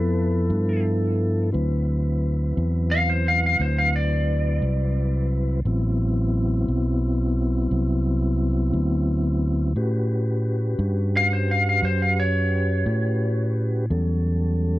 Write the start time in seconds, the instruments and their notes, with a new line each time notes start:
Already playing: fingered electric bass F2, tonewheel organ F3 B3 E4 A4, lead electric guitar B4
0.50 fingered electric bass G2
1.52 fingered electric bass D2, tonewheel organ F#3 C4 E4 B4
2.57 fingered electric bass E2
2.91 lead electric guitar F5
3.10 lead electric guitar C5
3.28 lead electric guitar F5
3.46 lead electric guitar F5
3.60 fingered electric bass D2, lead electric guitar C5
3.78 lead electric guitar F5
3.96 lead electric guitar D5
4.62 fingered electric bass C2
5.65 fingered electric bass A1, tonewheel organ F#3 B3 C4 E4
6.68 fingered electric bass B1
7.71 fingered electric bass C2
8.73 fingered electric bass D2
9.76 fingered electric bass A2, tonewheel organ C#4 F#4 G4 B4
10.79 fingered electric bass G2
11.17 lead electric guitar F5
11.33 lead electric guitar C5
11.51 lead electric guitar F5
11.69 lead electric guitar F5
11.82 fingered electric bass F#2, lead electric guitar C5
12.02 lead electric guitar F5
12.20 lead electric guitar C#5
12.86 fingered electric bass A2
13.90 fingered electric bass E2, tonewheel organ F#3 G3 C#4 A4